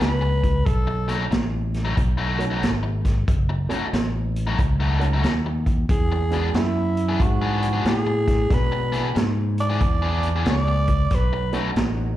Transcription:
0.00 C#2 B4, snare, closed hi-hat
0.21 muted overdriven electric guitar stroke
0.44 kick, closed hi-hat
0.66 B1 A4, kick, closed hi-hat
0.87 muted overdriven electric guitar stroke
1.08 B2 F#3 A3 D#4, snare, closed hi-hat
1.31 A1, muted overdriven electric guitar stroke, snare, closed hi-hat
1.74 snare, closed hi-hat
1.85 B2 F#3 A3 D#4
1.96 B1, muted overdriven electric guitar stroke, kick, closed hi-hat
2.18 B2 F#3 A3 D#4
2.38 A3 C#4 D#4 F#4, closed hi-hat
2.50 B2 F#3 A3 D#4
2.63 G#1, snare, closed hi-hat
2.83 muted overdriven electric guitar stroke
3.05 kick, snare, closed hi-hat
3.28 F#1, kick, closed hi-hat
3.49 muted overdriven electric guitar stroke
3.69 B2 F#3 A3 C#4 D#4 F#4, muted fingered electric bass stroke, closed hi-hat
3.93 A1, muted overdriven electric guitar stroke, snare, closed hi-hat
4.36 closed hi-hat
4.47 B2 F#3 A3 D#4
4.59 C#2, muted overdriven electric guitar stroke, kick, closed hi-hat
4.80 B2 F#3 A3 D#4
4.99 A3 C#4 D#4 F#4, closed hi-hat
5.13 B2 F#3 A3 D#4
5.24 D#2, snare, closed hi-hat
5.46 muted overdriven electric guitar stroke
5.66 kick, closed hi-hat
5.89 E2 G#4, kick, closed hi-hat
6.12 muted overdriven electric guitar stroke
6.31 E3 G#3 B3 D4 F#4 G#4, closed hi-hat
6.54 F#2 E4, muted overdriven electric guitar stroke, snare, closed hi-hat
6.97 closed hi-hat
7.09 E3 B3 D4 G#4
7.20 G#2 F#4, muted overdriven electric guitar stroke, kick, closed hi-hat
7.42 E3 B3 D4 G#4
7.62 closed hi-hat
7.73 E3 B3 D4 G#4
7.85 A2 G#4, snare, closed hi-hat
8.07 muted overdriven electric guitar stroke
8.28 kick, snare, closed hi-hat
8.49 B2 G#3 B3 D4 F#4, kick, snare, closed hi-hat
8.53 B4
8.72 muted overdriven electric guitar stroke
8.92 E3 B3 D4 G#4, snare, closed hi-hat
9.15 G#2, muted overdriven electric guitar stroke, snare, closed hi-hat
9.58 D5, closed hi-hat
9.70 E3 B3 D4 G#4
9.81 E2, muted overdriven electric guitar stroke, kick, closed hi-hat
10.02 E3 B3 D4 G#4
10.23 closed hi-hat
10.36 E3 B3 D4 G#4
10.45 C#2 G#3 B3 D4 G#4, snare, closed hi-hat
10.50 D5
10.68 muted overdriven electric guitar stroke
10.88 kick, closed hi-hat
11.10 B1 B4, kick, snare, closed hi-hat
11.33 muted overdriven electric guitar stroke
11.53 B2 F#3 A3 C#4 D#4 F#4, closed hi-hat
11.76 A1, muted overdriven electric guitar stroke, snare, closed hi-hat

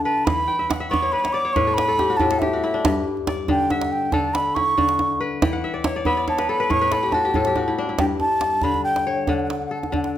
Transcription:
Already playing: D3 E4 A4
0.04 B4 A5
0.25 E3 B5, djembe slap, djembe tone, djembe bass
0.48 G5
0.59 E5, djembe slap
0.70 F#5, djembe slap, djembe tone
0.80 E5, djembe slap
0.90 B3 D5 C#6, djembe bass
1.02 C#5
1.12 B4 B5
1.24 C#5, djembe slap
1.33 D5 D6, djembe slap
1.45 C#5
1.53 A2 B4 C#6, djembe tone, djembe bass
1.67 A4
1.74 B4 B5
1.78 djembe slap
1.88 A4, djembe slap
1.99 G4, djembe tone
2.10 F#4
2.17 A2 G4 A5, djembe bass
2.31 A4, djembe slap
2.39 G4 E5, djembe tone
2.53 F#4
2.64 E4
2.74 D4
2.85 G2, djembe slap, djembe tone, djembe bass
3.17 djembe slap
3.27 D5, djembe slap, djembe tone
3.38 djembe slap
3.48 D3 G5, djembe bass
3.70 E5 F#5, djembe tone
3.81 djembe slap
3.91 G5, djembe slap
4.12 D3 A4 A5, djembe tone, djembe bass
4.34 B5, djembe slap
4.46 djembe slap
4.55 E4 C#6, djembe tone
4.78 D3, djembe bass
4.89 djembe slap
4.99 djembe tone
5.20 B4
5.42 E3 G5, djembe slap, djembe tone, djembe bass
5.53 F#5, djembe slap
5.64 E5
5.74 D5, djembe slap
5.84 C#5, djembe slap, djembe tone
5.95 D5, djembe slap
6.05 B3 E5 B5, djembe bass
6.17 D5
6.28 C#5 A5, djembe tone
6.38 B4, djembe slap
6.49 A4 B5
6.60 B4, djembe slap
6.70 A2 C#5 C#6, djembe tone, djembe bass
6.81 B4, djembe slap
6.92 A4 B5, djembe slap
7.03 G4
7.12 F#4 A5, djembe tone
7.25 G4
7.34 A2 A4, djembe bass
7.45 G4, djembe slap
7.56 F#4, djembe tone
7.68 E4
7.78 D4
7.89 E4
7.99 G2 G5, djembe slap, djembe bass
8.20 A5, djembe tone
8.41 djembe slap
8.52 djembe slap
8.62 D3 B5, djembe slap, djembe bass
8.74 djembe tone
8.84 G5
8.96 djembe slap
9.07 C#5
9.27 D3 F#5, djembe tone, djembe bass
9.37 F#5, djembe slap
9.43 F#5
9.50 F#5, djembe slap
9.59 F#5, djembe slap
9.66 F#5
9.71 A4 F#5
9.82 F#5, djembe slap, djembe tone
9.89 D3 F#5
9.94 F#5, djembe bass
10.03 F#5, djembe slap

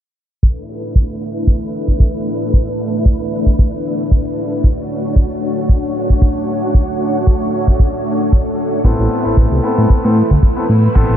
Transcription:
0.43 A3 D4 E4 B4, kick
0.69 open hi-hat
0.96 kick
1.21 open hi-hat
1.47 kick
1.75 open hi-hat
1.88 kick
2.00 kick
2.27 open hi-hat
2.54 kick
2.80 open hi-hat
3.06 kick
3.32 open hi-hat
3.46 kick
3.59 kick
3.85 open hi-hat
4.12 kick
4.37 open hi-hat
4.64 A3 F#4 C#5, kick
4.90 open hi-hat
5.16 kick
5.43 open hi-hat
5.69 kick
5.95 open hi-hat
6.10 kick
6.22 kick
6.49 open hi-hat
6.75 kick
7.00 open hi-hat
7.27 kick
7.53 open hi-hat
7.68 kick
7.80 kick
8.06 open hi-hat
8.33 kick
8.58 open hi-hat
8.84 A1 B3 C4 E4 A4 B4, kick
8.99 A1
9.11 open hi-hat
9.25 A1 B3 C4 E4 A4
9.37 A1, kick
9.52 C2
9.63 B3 C4 E4 A4, open hi-hat
9.78 A2
9.90 A2, kick
10.04 A2 B3 C4 E4 A4
10.16 open hi-hat
10.31 D2, kick
10.43 kick
10.56 B3 C4 E4 A4
10.69 A2, open hi-hat
10.95 A1 B3 C4 E4 A4, kick
11.10 A1

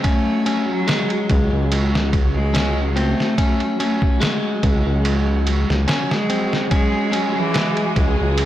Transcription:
Already playing: F#3 F#4
0.03 A3 C#4, kick, ride
0.46 C#4, ride
0.69 F#3
0.87 G#3, snare, ride
1.10 ride
1.29 C#2, kick, ride
1.53 C#2
1.72 ride
1.95 snare
2.13 kick, ride
2.35 G#3
2.54 C#4, snare, ride
2.96 A3 C4, ride
3.20 snare
3.38 C#4, kick, ride
3.60 ride
3.80 A3 C#4, ride
4.02 kick
4.20 G#3, snare, ride
4.63 C#2, kick, ride
4.86 C#2
5.05 C#2, ride
5.47 ride
5.69 C#2, snare
5.88 C#4, snare, ride
6.11 G#3, snare
6.30 C4, ride
6.53 snare
6.71 G#3 C#4 G#4, kick, ride
7.12 C#4, ride
7.36 E3
7.54 G#3, snare, ride
7.77 ride
7.96 C#2, kick, ride
8.20 C#2
8.38 ride

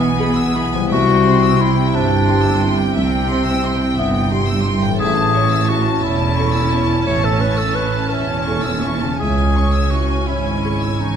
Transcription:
Already playing: B1 E2 B2 G#3 B3 E4 B4 E5 G#5
0.00 G#5
0.19 G#4 B5
0.36 E6
0.54 E4 B5
0.73 C3 G#5
0.78 G3
0.83 E4
0.87 E5
0.92 C2 C3 F#4 G5
1.09 G5
1.26 C5 C6
1.43 E6
1.59 E4 C6
1.76 G5
1.92 G1 G2 D4 C5 E5
2.10 G5
2.28 G4 C6
2.43 E6
2.60 E4 C6
2.77 G5
2.95 C2 C3 C4 E5
3.11 G5
3.30 C5 C6
3.47 E6
3.64 E4 C6
3.81 G5
3.97 G1 G2 B3 E5
4.15 G5
4.31 G4 C6
4.48 E6
4.65 E4 C6
4.81 A2 G5
4.86 C#4
4.90 E3
4.95 A1 C#5
5.00 A1 A2 C#4 G#4 E5 A5
5.17 A5
5.35 C#5 C#6
5.51 E6
5.66 E4 F#4 C#6
5.84 A5
6.02 E1 E2 E4 C#5 E5
6.19 A5
6.37 A4 C#6
6.54 E6
6.72 E4 C#6
6.88 A5
7.05 A1 A2 C#5 E5
7.23 A4 A5
7.41 B4 C#5 C#6
7.58 A4 E6
7.75 E4 B4 C#6
7.93 A5
8.10 E1 E2 C#4 C#5 E5
8.28 A5
8.47 A4 C#6
8.64 E6
8.83 E4 C#6
9.02 C#3 A5
9.07 C#4
9.16 G#4 G#5
9.21 C#2 C#4 E5 G#5
9.38 G#5
9.56 C#5 C#6
9.73 E6
9.91 E4 F#4 C#6
10.10 G#5
10.27 G#1 G#2 E4 C#5 E5
10.46 G#5
10.65 G#4 C#6
10.82 E6
11.01 E3 D#4 C#6

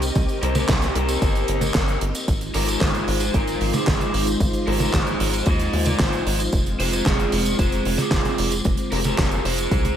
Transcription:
Already playing: C2 C4 G4 A#4 D#5
0.02 closed hi-hat, tambourine
0.15 C2, kick, closed hi-hat, high tom, tambourine
0.28 closed hi-hat, tambourine
0.42 C2 G4 A#4, closed hi-hat
0.55 G4 A#4, closed hi-hat, high tom, tambourine
0.68 C2 D#4 G4, kick, snare, clap, closed hi-hat, tambourine
0.82 snare, closed hi-hat, tambourine
0.95 C2 G4 A#4, closed hi-hat
1.09 closed hi-hat, tambourine
1.22 G1, kick, closed hi-hat, tambourine
1.35 closed hi-hat, tambourine
1.48 G1, closed hi-hat
1.61 closed hi-hat, high tom, tambourine
1.74 G1, kick, snare, clap, closed hi-hat, tambourine
1.88 closed hi-hat, tambourine
2.01 G1, closed hi-hat
2.15 closed hi-hat, tambourine
2.28 G#1 G#3 D#4 F4 C5, kick, closed hi-hat, tambourine
2.41 closed hi-hat, tambourine
2.54 G#1 G4 A#4, open hi-hat
2.68 G4 A#4, closed hi-hat, tambourine
2.81 G#1 G#4 C5, kick, snare, clap, closed hi-hat
2.94 closed hi-hat, tambourine
3.08 G#1, open hi-hat
3.20 closed hi-hat, tambourine
3.34 G#1 F4 A#4, kick, closed hi-hat, tambourine
3.47 closed hi-hat, tambourine
3.61 G#1, open hi-hat
3.74 F4 G#4, closed hi-hat, high tom, tambourine
3.87 G#1 F4 G#4, kick, snare, clap, closed hi-hat, tambourine
4.00 closed hi-hat, high tom, tambourine
4.14 G#1, open hi-hat
4.27 closed hi-hat, tambourine
4.40 G#1, kick, closed hi-hat, high tom, tambourine
4.53 closed hi-hat, tambourine
4.67 G#1 G4 A#4, open hi-hat
4.80 G4 A#4, closed hi-hat, high tom, tambourine
4.93 G#1 G#4 C5, kick, snare, clap, closed hi-hat
5.07 closed hi-hat, tambourine
5.20 G#1, open hi-hat
5.33 closed hi-hat, tambourine
5.46 D#2 C5 D#5, kick, closed hi-hat, tambourine
5.59 closed hi-hat, tambourine
5.73 D#2, open hi-hat
5.86 A#4 D5, closed hi-hat, high tom, tambourine
5.99 G#1 C5 D#5, kick, snare, clap, closed hi-hat
6.13 closed hi-hat, tambourine
6.26 G#1, open hi-hat
6.40 closed hi-hat, tambourine
6.52 F1 G#3 C4, kick, closed hi-hat, tambourine
6.66 closed hi-hat, tambourine
6.79 F1 G#4 C5, open hi-hat
6.93 G#4 C5, closed hi-hat, tambourine
7.06 F1 G#4 D5, kick, snare, clap, closed hi-hat, tambourine
7.19 closed hi-hat, tambourine
7.32 F1, open hi-hat
7.45 closed hi-hat, tambourine
7.59 F1 G#4 C5, kick, closed hi-hat, tambourine
7.72 closed hi-hat, tambourine
7.85 F1, open hi-hat
7.98 F4 G#4, closed hi-hat, high tom, tambourine
8.11 F1 F4 G#4, kick, snare, clap, closed hi-hat, tambourine
8.25 closed hi-hat, high tom, tambourine
8.38 F1, open hi-hat
8.52 closed hi-hat, tambourine
8.64 F1, kick, closed hi-hat, high tom, tambourine
8.77 closed hi-hat, tambourine
8.92 F1 G4 A#4, open hi-hat
9.04 G4 A#4, closed hi-hat, high tom, tambourine
9.18 F1, kick, snare, clap, closed hi-hat, tambourine
9.31 closed hi-hat, tambourine
9.45 F1 G#4 C5, open hi-hat
9.58 closed hi-hat, tambourine
9.71 C2, kick, closed hi-hat, high tom, tambourine
9.85 closed hi-hat, high tom, tambourine

